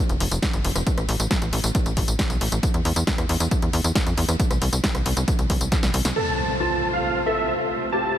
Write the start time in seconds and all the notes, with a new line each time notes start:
0.09 F1, closed hi-hat, tambourine
0.20 F1, open hi-hat
0.31 F1, closed hi-hat, tambourine
0.42 kick, snare, closed hi-hat, tambourine
0.53 G1, closed hi-hat, tambourine
0.65 F1, open hi-hat
0.76 F1, cross-stick, closed hi-hat, tambourine
0.87 kick, closed hi-hat, tambourine
0.98 A1, cross-stick, closed hi-hat, tambourine
1.09 A1, open hi-hat
1.20 A1, closed hi-hat, tambourine
1.31 kick, snare, closed hi-hat, tambourine
1.42 A1, closed hi-hat, tambourine
1.53 A1, open hi-hat
1.64 A1, closed hi-hat, tambourine
1.75 kick, closed hi-hat, tambourine
1.86 A1, closed hi-hat, tambourine
1.97 A1, kick, open hi-hat
2.08 A1, closed hi-hat, tambourine
2.19 kick, snare, closed hi-hat, tambourine
2.30 B1, closed hi-hat, tambourine
2.41 A1, open hi-hat
2.52 A1, closed hi-hat, tambourine
2.63 kick, closed hi-hat, tambourine
2.74 E2, closed hi-hat, tambourine
2.85 E2, open hi-hat
2.96 E2, closed hi-hat, tambourine
3.07 kick, snare, closed hi-hat, tambourine
3.18 E2, cross-stick, closed hi-hat, tambourine
3.29 E2, open hi-hat
3.40 E2, closed hi-hat, tambourine
3.51 kick, closed hi-hat, tambourine
3.62 E2, closed hi-hat, tambourine
3.73 E2, open hi-hat
3.84 E2, closed hi-hat, tambourine
3.95 kick, snare, closed hi-hat, tambourine
4.06 F2, closed hi-hat, tambourine
4.17 E2, open hi-hat
4.29 E2, cross-stick, closed hi-hat, tambourine
4.40 kick, closed hi-hat, tambourine
4.51 C2, cross-stick, closed hi-hat, tambourine
4.62 C2, open hi-hat
4.73 C2, closed hi-hat, tambourine
4.84 kick, snare, closed hi-hat, tambourine
4.95 C2, cross-stick, closed hi-hat, tambourine
5.06 C2, open hi-hat
5.17 C2, closed hi-hat, tambourine
5.28 kick, closed hi-hat, tambourine
5.39 C2, closed hi-hat, tambourine
5.50 C2, kick, open hi-hat
5.61 C2, closed hi-hat, tambourine
5.72 kick, snare, closed hi-hat, tambourine
5.83 C2, snare, closed hi-hat, tambourine
5.94 C2, open hi-hat
6.05 C2, snare, closed hi-hat, tambourine
6.16 C3 A3 F4 A4 C5 A5, crash, impact
6.60 F4 A5
6.93 F5
7.26 A4 E5
7.92 E4 G4 C5 A5